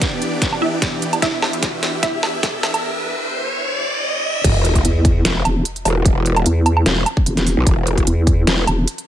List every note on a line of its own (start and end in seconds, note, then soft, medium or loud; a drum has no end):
0.00 4.40 E3 medium
0.00 4.40 B3 medium
0.00 4.40 D4 medium
0.00 4.40 G4 medium
0.00 1.19 D5 medium
0.00 kick medium
0.00 snare medium
0.00 closed hi-hat medium
0.00 riser medium
0.22 closed hi-hat medium
0.42 kick loud
0.42 snare medium
0.42 closed hi-hat medium
0.53 low woodblock medium
0.62 1.15 E4 medium
0.62 1.15 E5 medium
0.82 kick loud
0.82 snare medium
0.82 closed hi-hat medium
1.02 closed hi-hat medium
1.13 closed hi-hat medium
1.13 low woodblock medium
1.22 1.95 E4 medium
1.22 1.95 E5 loud
1.22 4.41 E5 loud
1.22 kick loud
1.22 snare medium
1.22 closed hi-hat medium
1.42 snare medium
1.42 low woodblock medium
1.53 closed hi-hat medium
1.63 kick medium
1.63 snare medium
1.63 closed hi-hat medium
1.83 snare medium
1.83 closed hi-hat medium
2.03 2.76 E4 medium
2.03 2.76 E5 medium
2.03 kick loud
2.03 snare medium
2.03 closed hi-hat medium
2.23 snare medium
2.23 low woodblock medium
2.43 kick loud
2.43 snare medium
2.43 closed hi-hat medium
2.63 snare medium
2.63 closed hi-hat medium
2.63 low woodblock medium
2.74 closed hi-hat medium
2.74 low woodblock medium
4.44 4.83 E1 loud
4.44 kick loud
4.44 closed hi-hat medium
4.44 crash loud
4.44 sub drop medium
4.65 closed hi-hat medium
4.75 kick medium
4.75 closed hi-hat soft
4.85 5.23 E2 medium
4.85 closed hi-hat medium
5.05 kick loud
5.05 closed hi-hat medium
5.25 5.44 E1 loud
5.25 snare loud
5.25 closed hi-hat medium
5.45 5.64 E1 medium
5.45 closed hi-hat medium
5.45 low woodblock medium
5.65 closed hi-hat medium
5.76 closed hi-hat soft
5.85 6.04 E1 loud
5.85 open hi-hat loud
5.85 low woodblock medium
6.05 6.44 E1 loud
6.05 kick loud
6.05 closed hi-hat medium
6.26 closed hi-hat medium
6.36 closed hi-hat soft
6.36 low woodblock medium
6.46 6.85 E2 medium
6.46 closed hi-hat medium
6.66 closed hi-hat medium
6.66 low woodblock medium
6.77 low woodblock medium
6.86 7.05 E1 loud
6.86 snare loud
6.86 closed hi-hat medium
7.06 closed hi-hat medium
7.06 low woodblock medium
7.17 kick loud
7.26 7.55 E1 medium
7.26 closed hi-hat medium
7.37 snare soft
7.37 closed hi-hat soft
7.47 open hi-hat medium
7.57 7.65 B1 loud
7.67 8.05 E1 loud
7.67 kick loud
7.67 closed hi-hat medium
7.87 closed hi-hat medium
7.97 kick medium
7.97 closed hi-hat soft
8.07 8.46 E2 loud
8.07 closed hi-hat medium
8.27 kick loud
8.27 closed hi-hat medium
8.47 8.66 E1 loud
8.47 snare loud
8.47 closed hi-hat medium
8.67 8.86 E1 loud
8.67 closed hi-hat medium
8.67 low woodblock medium
8.88 closed hi-hat medium
8.98 closed hi-hat soft